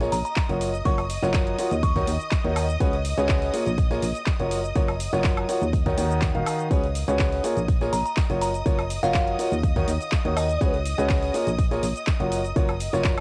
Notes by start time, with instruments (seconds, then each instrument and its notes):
Already playing: violin section D#5 D#6
0.01 upright piano A#3 F4 G#4 A#4 C#5, snare, closed hi-hat
0.12 fm bass A#1, synth bell A#5, closed hi-hat, open hi-hat, cabasa
0.25 synth bell A#5, closed hi-hat, cabasa
0.36 kick, snare, clap, closed hi-hat, cabasa
0.49 fm bass F#1, upright piano F#3 F4 F#4 A#4 C#5, closed hi-hat
0.61 closed hi-hat, open hi-hat, cabasa
0.74 closed hi-hat, cabasa
0.85 fm bass F#1, upright piano F#3 F4 F#4 A#4 C#5, synth bell C#6, kick, closed hi-hat, cabasa
0.98 closed hi-hat, high woodblock
1.10 closed hi-hat, open hi-hat, cabasa
1.22 fm bass F#1, upright piano F#3 F4 F#4 A#4 C#5, snare, closed hi-hat, cabasa
1.33 kick, snare, clap, closed hi-hat, cabasa
1.47 closed hi-hat
1.58 upright piano F4 F#4 A#4 C#5, closed hi-hat, open hi-hat, cabasa
1.71 fm bass D#2, closed hi-hat, cabasa
1.83 synth bell C#6, kick, closed hi-hat, cabasa
1.95 upright piano D#3 D#4 F#4 A#4 C#5, kick, snare, closed hi-hat
2.07 fm bass D#2, closed hi-hat, open hi-hat, cabasa
2.20 closed hi-hat, cabasa
2.31 kick, snare, clap, closed hi-hat, cabasa
2.44 fm bass D#2, upright piano D#3 D#4 F#4 A#4 C#5, closed hi-hat
2.56 closed hi-hat, open hi-hat, cabasa, high woodblock
2.69 closed hi-hat, cabasa
2.80 fm bass C#2, upright piano C#4 F#4 G#4 B4 C#5, kick, closed hi-hat, cabasa
2.93 closed hi-hat
3.05 closed hi-hat, open hi-hat, cabasa
3.18 fm bass C#2, upright piano C#4 F#4 G#4 B4 C#5, closed hi-hat, cabasa
3.29 kick, snare, clap, closed hi-hat, open hi-hat, cabasa
3.42 snare, closed hi-hat
3.54 upright piano A#3 F4 G#4 A#4 C#5, closed hi-hat, open hi-hat, cabasa
3.66 fm bass A#1, closed hi-hat, cabasa
3.78 kick, closed hi-hat, cabasa
3.90 upright piano A#3 F4 G#4 A#4 C#5, snare, closed hi-hat
4.02 fm bass A#1, closed hi-hat, open hi-hat, cabasa
4.15 closed hi-hat, cabasa
4.26 kick, snare, clap, closed hi-hat, cabasa
4.40 fm bass F#1, upright piano F#3 F4 F#4 A#4 C#5, closed hi-hat
4.51 closed hi-hat, open hi-hat, cabasa
4.64 closed hi-hat, cabasa
4.75 fm bass F#1, upright piano F#3 F4 F#4 A#4 C#5, kick, closed hi-hat, cabasa
4.88 closed hi-hat, high woodblock
5.00 closed hi-hat, open hi-hat, cabasa
5.13 fm bass F#1, upright piano F#3 F4 F#4 A#4 C#5, snare, closed hi-hat, cabasa
5.24 kick, snare, clap, closed hi-hat, cabasa
5.37 closed hi-hat, high woodblock
5.49 upright piano F4 F#4 A#4 C#5, closed hi-hat, open hi-hat, cabasa
5.62 fm bass D#2, closed hi-hat, cabasa
5.73 kick, closed hi-hat, cabasa
5.86 upright piano D#3 D#4 F#4 A#4 C#5, kick, snare, closed hi-hat
5.98 fm bass D#2, upright piano D#3 D#4 F#4 A#4 C#5, closed hi-hat, open hi-hat, cabasa
6.10 closed hi-hat, cabasa
6.21 kick, snare, clap, closed hi-hat, cabasa
6.35 fm bass D#1, upright piano D#3 D#4 F#4 A#4 F5, closed hi-hat
6.46 closed hi-hat, open hi-hat, cabasa, high woodblock
6.59 closed hi-hat, cabasa
6.71 fm bass C#2, upright piano C#4 F#4 G#4 B4 C#5, violin section D#5 D#6, kick, closed hi-hat, cabasa
6.83 closed hi-hat
6.95 closed hi-hat, open hi-hat, cabasa
7.08 fm bass C#2, upright piano C#4 F#4 G#4 B4 C#5, closed hi-hat, cabasa
7.19 kick, snare, clap, closed hi-hat, open hi-hat, cabasa
7.32 snare, closed hi-hat
7.43 upright piano A#3 F4 G#4 A#4 C#5, closed hi-hat, open hi-hat, cabasa
7.57 fm bass A#1, closed hi-hat, cabasa
7.68 kick, closed hi-hat, cabasa
7.81 upright piano A#3 F4 G#4 A#4 C#5, snare, closed hi-hat
7.93 fm bass A#1, synth bell A#5, closed hi-hat, open hi-hat, cabasa
8.05 synth bell A#5, closed hi-hat, cabasa
8.17 kick, snare, clap, closed hi-hat, cabasa
8.29 fm bass F#1, upright piano F#3 F4 F#4 A#4 C#5, closed hi-hat
8.41 synth bell A#5, closed hi-hat, open hi-hat, cabasa
8.54 closed hi-hat, cabasa
8.66 fm bass F#1, upright piano F#3 F4 F#4 A#4 C#5, kick, closed hi-hat, cabasa
8.79 closed hi-hat, high woodblock
8.90 closed hi-hat, open hi-hat, cabasa
9.03 fm bass F#1, upright piano F#3 F4 F#4 A#4 C#5, synth bell F5, snare, closed hi-hat, cabasa
9.14 kick, snare, clap, closed hi-hat, cabasa
9.27 closed hi-hat
9.39 upright piano F4 F#4 A#4 C#5, closed hi-hat, open hi-hat, cabasa
9.52 fm bass D#2, closed hi-hat, cabasa
9.63 kick, closed hi-hat, cabasa
9.76 upright piano D#3 D#4 F#4 A#4 C#5, kick, snare, closed hi-hat
9.88 fm bass D#2, closed hi-hat, open hi-hat, cabasa
10.01 closed hi-hat, cabasa
10.12 kick, snare, clap, closed hi-hat, cabasa
10.25 fm bass D#2, upright piano D#3 D#4 F#4 A#4 C#5, closed hi-hat
10.37 synth bell D#5, closed hi-hat, open hi-hat, cabasa, high woodblock
10.49 closed hi-hat, cabasa
10.61 fm bass C#2, upright piano C#4 F#4 G#4 B4 C#5, kick, closed hi-hat, cabasa
10.74 closed hi-hat
10.85 closed hi-hat, open hi-hat, cabasa
10.98 fm bass C#2, upright piano C#4 F#4 G#4 B4 C#5, closed hi-hat, cabasa
11.09 kick, snare, clap, closed hi-hat, open hi-hat, cabasa
11.22 snare, closed hi-hat
11.34 upright piano A#3 F4 G#4 A#4 C#5, closed hi-hat, open hi-hat, cabasa
11.47 fm bass A#1, closed hi-hat, cabasa
11.58 kick, closed hi-hat, cabasa
11.71 upright piano A#3 F4 G#4 A#4 C#5, snare, closed hi-hat
11.83 fm bass A#1, closed hi-hat, open hi-hat, cabasa
11.96 closed hi-hat, cabasa
12.07 kick, snare, clap, closed hi-hat, cabasa
12.20 fm bass F#1, upright piano F#3 F4 F#4 A#4 C#5, closed hi-hat
12.32 closed hi-hat, open hi-hat, cabasa
12.44 closed hi-hat, cabasa
12.56 fm bass F#1, upright piano F#3 F4 F#4 A#4 C#5, kick, closed hi-hat, cabasa
12.68 closed hi-hat, high woodblock
12.80 closed hi-hat, open hi-hat, cabasa
12.93 fm bass F#1, upright piano F#3 F4 F#4 A#4 C#5, snare, closed hi-hat, cabasa
13.04 kick, snare, clap, closed hi-hat, cabasa